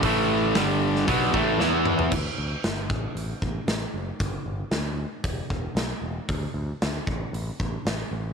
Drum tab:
CC |----------------|x---------------|----------------|----------------|
HH |o---o---o-------|----o---o---o---|o---o---o---o---|o---o---o---o---|
SD |----o--o----o---|----o-------o---|----o-------o---|----o-------o---|
T2 |--------------o-|----------------|----------------|----------------|
FT |---------------o|----------------|----------------|----------------|
BD |o-------o-o-----|o-----o---o-----|o-------o-o-----|o-----o---o-----|